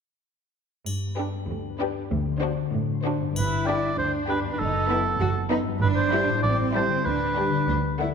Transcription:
0.86 G2, triangle
1.07 B3
1.18 D4 G4 B4
1.28 D4
1.48 D2 G4
1.69 B4
1.79 D4 G4 B4
1.89 D4
2.10 D2 D3
2.31 C4
2.41 D4 F#4 C5
2.51 D4
2.72 A2 F#4
2.93 C5
3.04 D4 F#4 C5
3.14 G2 D4
3.22 B3
3.26 D4
3.31 G4
3.36 G1 E4 B4, triangle
3.66 D4 G4 D5 G5
3.98 D2 D4 C5
4.28 D4 G4 B4 G5
4.41 F#2
4.46 B3
4.50 D#4 B4
4.55 B4
4.59 F#1 D#4 A4
4.89 B3 D#4 E4 B5
5.20 F#1 F#4
5.50 B3 D#4 B5
5.63 G2
5.68 G3
5.72 E4
5.76 B4
5.81 G1 D4 B4
5.96 C5
6.12 G3 E4 B5
6.25 A2
6.30 G3
6.34 E4
6.39 A4
6.43 A1 C4 D5
6.74 G3 E4 C5 A5
6.87 D3
6.92 G3
6.96 D4
7.01 G4
7.05 D2 D4 B4
7.37 G3 D4 G5
7.50 D3
7.55 A3
7.64 F#4
7.68 D2 D4
8.00 A3 D4 E4 F#5

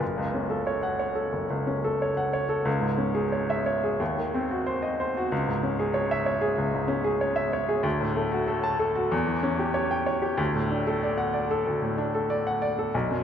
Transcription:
0.00 F#1
0.18 C#2
0.34 C#4
0.50 A4
0.67 C#5
0.83 F#5
0.99 C#5
1.15 A4
1.33 F#1
1.50 C#2
1.67 C#4
1.84 A4
2.02 C#5
2.17 F#5
2.33 C#5
2.49 A4
2.65 C#2
2.81 G#2
2.98 C#4
3.15 G#4
3.32 C#5
3.50 E5
3.66 C#5
3.84 G#4
4.00 D#2
4.18 D#3
4.34 C4
4.51 F#4
4.66 C5
4.82 D#5
5.00 C5
5.17 F#4
5.32 C#2
5.48 G#2
5.63 C#4
5.79 G#4
5.94 C#5
6.11 E5
6.26 C#5
6.41 G#4
6.58 C#2
6.74 G#2
6.88 C#4
7.04 G#4
7.21 C#5
7.36 E5
7.53 C#5
7.69 G#4
7.83 D2
8.01 A2
8.16 A3
8.32 F#4
8.48 A4
8.63 A5
8.79 A4
8.95 F#4
9.12 E2
9.27 E3
9.43 C#4
9.59 G4
9.74 C#5
9.91 G5
10.06 C#5
10.22 G4
10.38 D2
10.55 A2
10.71 D4
10.87 A4
11.03 D5
11.18 F#5
11.34 D5
11.51 A4
11.67 D2
11.82 A2
11.98 D4
12.15 A4
12.30 D5
12.47 F#5
12.62 D5
12.79 A4
12.94 B1
13.11 F#2

